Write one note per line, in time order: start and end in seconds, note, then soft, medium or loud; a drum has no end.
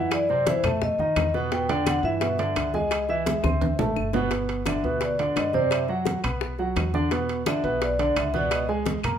0.00 0.58 F#2 medium
0.00 0.23 E3 medium
0.00 0.23 E4 medium
0.00 0.24 E5 medium
0.11 0.45 D5 medium
0.11 high bongo medium
0.11 high conga soft
0.11 high timbale loud
0.11 claves medium
0.29 0.44 C3 medium
0.29 0.44 C4 medium
0.29 0.44 C5 medium
0.29 high bongo soft
0.29 high conga soft
0.47 0.61 E3 medium
0.47 0.61 E4 medium
0.47 0.63 C5 medium
0.47 0.62 E5 medium
0.47 high bongo medium
0.47 high conga loud
0.47 high timbale medium
0.63 0.96 F2 medium
0.63 0.93 A3 medium
0.63 0.93 A4 medium
0.63 0.73 E5 medium
0.63 0.93 A5 medium
0.63 high conga soft
0.63 low conga medium
0.63 high timbale medium
0.63 claves medium
0.82 1.31 D#5 medium
0.82 high bongo medium
0.82 high conga soft
0.82 low conga medium
0.98 1.15 F2 medium
0.98 1.28 D#3 medium
0.98 1.28 D#4 medium
0.98 1.28 D#5 medium
0.98 high bongo soft
0.98 high conga soft
1.16 1.98 E2 loud
1.16 high bongo soft
1.16 low bongo medium
1.16 high conga medium
1.16 high timbale medium
1.16 low timbale medium
1.16 claves medium
1.34 1.48 B2 medium
1.34 1.48 B3 medium
1.34 1.49 B4 medium
1.34 high bongo soft
1.34 high conga medium
1.52 1.66 B2 medium
1.52 1.66 B3 medium
1.52 1.66 B4 medium
1.52 1.88 G5 loud
1.52 high bongo medium
1.52 high conga soft
1.52 high timbale medium
1.69 1.98 D3 medium
1.69 1.98 D4 medium
1.69 1.98 D5 medium
1.69 high bongo soft
1.69 high conga soft
1.69 high timbale medium
1.86 2.05 F#5 medium
1.86 high bongo medium
1.86 high conga loud
1.86 high timbale medium
1.86 claves medium
2.03 2.52 G2 loud
2.03 2.18 E3 medium
2.03 2.18 E4 medium
2.03 2.19 E5 medium
2.03 2.71 E5 medium
2.03 high conga soft
2.21 2.36 B2 medium
2.21 2.36 B3 medium
2.21 2.36 B4 medium
2.21 high bongo medium
2.21 high conga soft
2.21 high timbale medium
2.38 2.68 D3 medium
2.38 2.68 D4 medium
2.38 2.68 D5 medium
2.38 high bongo soft
2.38 high conga soft
2.38 high timbale medium
2.56 3.38 C#2 medium
2.56 high bongo soft
2.56 low bongo medium
2.56 high conga soft
2.56 high timbale medium
2.56 claves medium
2.74 3.03 G#3 medium
2.74 3.03 G#4 medium
2.74 3.10 D#5 medium
2.74 3.03 G#5 medium
2.74 high bongo soft
2.74 high conga medium
2.91 high bongo medium
2.91 high conga soft
2.91 high timbale loud
2.91 claves medium
3.09 3.23 E3 medium
3.09 3.23 E4 medium
3.09 3.24 E5 medium
3.09 4.10 E5 medium
3.09 high bongo soft
3.09 high conga soft
3.26 3.41 G#3 medium
3.26 3.41 G#4 medium
3.26 3.41 G#5 medium
3.26 high bongo medium
3.26 high conga loud
3.26 high timbale medium
3.43 3.76 D2 medium
3.43 3.72 C4 medium
3.43 3.72 C5 medium
3.43 3.72 C6 medium
3.43 high bongo medium
3.43 high conga medium
3.43 high timbale medium
3.43 claves medium
3.61 high conga medium
3.61 high timbale medium
3.79 3.95 A1 medium
3.79 4.08 A3 medium
3.79 4.08 A4 medium
3.79 4.08 A5 medium
3.79 low bongo medium
3.79 low conga medium
3.79 low timbale medium
3.96 4.78 G1 medium
3.96 low bongo medium
3.96 claves medium
4.13 4.28 B2 loud
4.13 4.28 B3 loud
4.13 4.29 B4 medium
4.13 low bongo medium
4.13 low conga medium
4.13 low timbale medium
4.31 4.60 B2 medium
4.31 4.60 B3 medium
4.31 4.60 B4 medium
4.31 high bongo medium
4.31 high conga soft
4.31 high timbale medium
4.49 high bongo soft
4.49 high conga soft
4.49 high timbale medium
4.66 4.81 D3 medium
4.66 4.81 D4 medium
4.66 4.81 D5 medium
4.66 5.00 E5 medium
4.66 high bongo medium
4.66 high conga medium
4.66 high timbale medium
4.66 claves medium
4.84 5.33 D2 medium
4.84 5.13 B2 medium
4.84 5.13 B3 medium
4.84 5.13 B4 medium
4.84 high conga soft
5.01 5.35 D5 medium
5.01 high bongo medium
5.01 high conga soft
5.01 high timbale medium
5.19 5.48 D3 medium
5.19 5.48 D4 medium
5.19 5.48 D5 medium
5.19 high bongo soft
5.19 high conga soft
5.19 high timbale medium
5.36 6.18 F#2 medium
5.36 5.54 D#5 medium
5.36 high bongo soft
5.36 low bongo medium
5.36 high conga soft
5.36 high timbale medium
5.36 low timbale medium
5.36 claves medium
5.53 5.83 C3 medium
5.53 5.83 C4 medium
5.53 5.83 C5 medium
5.53 5.72 D5 medium
5.53 high bongo soft
5.53 high conga medium
5.71 5.89 E5 medium
5.71 high bongo medium
5.71 high conga soft
5.71 high timbale loud
5.71 claves medium
5.88 6.18 F#3 medium
5.88 6.18 F#4 medium
5.88 6.18 F#5 medium
5.88 high bongo soft
5.88 high conga soft
6.05 high bongo medium
6.05 high conga medium
6.05 high timbale medium
6.23 6.73 B1 medium
6.23 6.52 B3 medium
6.23 6.53 B4 medium
6.23 6.53 B5 medium
6.23 high conga soft
6.23 low conga medium
6.23 high timbale medium
6.23 claves medium
6.41 high bongo medium
6.41 high conga soft
6.59 6.88 F#3 medium
6.59 6.88 F#4 medium
6.59 6.88 F#5 medium
6.59 high bongo soft
6.59 high conga soft
6.76 7.58 E2 medium
6.76 high bongo soft
6.76 low bongo medium
6.76 high conga medium
6.76 high timbale medium
6.76 low timbale medium
6.76 claves medium
6.94 7.08 D3 medium
6.94 7.09 D4 medium
6.94 7.09 D5 medium
6.94 high bongo soft
6.94 high conga medium
7.11 7.40 B2 medium
7.11 7.41 B3 medium
7.11 7.41 B4 medium
7.11 high bongo medium
7.11 high timbale medium
7.29 high bongo soft
7.29 high conga soft
7.29 high timbale medium
7.46 7.61 D3 medium
7.46 7.61 D4 medium
7.46 7.62 D5 medium
7.46 7.80 E5 medium
7.46 high bongo medium
7.46 high conga medium
7.46 high timbale medium
7.46 claves medium
7.64 8.13 B1 loud
7.64 7.93 B2 medium
7.64 7.93 B3 medium
7.64 7.93 B4 medium
7.64 high conga soft
7.81 8.15 D5 medium
7.81 high bongo medium
7.81 high conga soft
7.81 high timbale medium
7.99 8.28 D3 medium
7.99 8.28 D4 medium
7.99 8.28 D5 medium
7.99 high bongo soft
7.99 high conga soft
7.99 high timbale medium
8.16 8.98 C#2 loud
8.16 8.34 E5 medium
8.16 high bongo soft
8.16 low bongo medium
8.16 high conga soft
8.16 high timbale loud
8.16 claves medium
8.34 8.63 B2 medium
8.34 8.63 B3 loud
8.34 8.63 B4 medium
8.34 8.52 D5 medium
8.34 high bongo soft
8.34 high conga medium
8.51 8.69 D#5 medium
8.51 high bongo medium
8.51 high timbale loud
8.51 claves medium
8.69 8.98 G#3 medium
8.69 8.98 G#4 medium
8.69 8.98 G#5 medium
8.69 high bongo soft
8.69 high conga soft
8.86 high bongo medium
8.86 high conga loud
8.86 high timbale medium
9.03 9.19 F#2 medium
9.03 9.19 A#3 medium
9.03 9.19 A#4 medium
9.03 9.19 A#5 medium
9.03 high conga soft
9.03 low conga medium
9.03 high timbale medium
9.03 claves medium